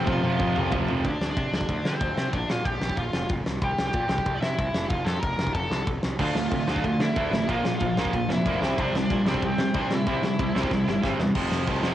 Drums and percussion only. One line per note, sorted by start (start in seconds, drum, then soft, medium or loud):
0.07 kick loud
0.07 high tom medium
0.24 high tom medium
0.39 kick loud
0.39 mid tom medium
0.56 mid tom medium
0.72 kick loud
0.72 floor tom loud
0.88 floor tom loud
1.05 kick loud
1.05 ride medium
1.21 snare loud
1.37 kick loud
1.37 ride medium
1.53 snare loud
1.61 kick loud
1.69 kick loud
1.69 ride medium
1.85 snare loud
2.01 kick loud
2.01 ride medium
2.18 snare loud
2.33 kick loud
2.33 ride medium
2.50 snare loud
2.65 kick loud
2.65 ride medium
2.82 snare loud
2.90 kick medium
2.97 kick medium
2.97 ride medium
3.13 snare loud
3.29 kick loud
3.29 ride medium
3.46 snare loud
3.62 kick loud
3.62 ride medium
3.78 snare loud
3.93 kick loud
3.93 ride medium
4.09 snare loud
4.18 kick medium
4.26 kick loud
4.26 ride medium
4.42 snare loud
4.58 kick loud
4.58 ride medium
4.74 snare loud
4.90 kick loud
4.90 ride medium
5.07 snare loud
5.23 kick loud
5.23 ride medium
5.39 snare loud
5.47 kick medium
5.55 kick loud
5.55 ride medium
5.72 snare loud
5.87 kick loud
5.87 ride medium
6.03 snare loud
6.19 kick loud
6.19 crash loud
6.35 snare loud
6.51 kick loud
6.51 ride medium
6.68 snare loud
6.76 kick medium
6.84 kick medium
6.84 ride medium
7.00 snare loud
7.16 kick loud
7.16 ride medium
7.33 snare loud
7.49 kick loud
7.49 ride medium
7.65 snare loud
7.80 kick loud
7.80 ride medium
7.97 snare loud
8.05 kick medium
8.13 kick medium
8.13 ride medium
8.30 snare loud
8.46 kick loud
8.46 ride medium
8.63 snare loud
8.78 kick loud
8.78 ride medium
8.95 snare loud
9.10 kick loud
9.10 ride medium
9.27 snare loud
9.34 kick medium
9.42 kick medium
9.42 ride medium
9.58 snare loud
9.74 kick loud
9.74 ride medium
9.91 snare loud
10.07 kick loud
10.07 ride medium
10.23 snare loud
10.39 kick loud
10.39 ride medium
10.56 snare loud
10.63 kick loud
10.71 kick medium
10.71 snare medium
10.88 snare medium
11.03 kick loud
11.03 snare medium
11.20 snare medium
11.35 kick loud
11.35 crash loud
11.35 crash medium
11.52 snare loud
11.67 kick loud
11.67 crash medium
11.83 snare loud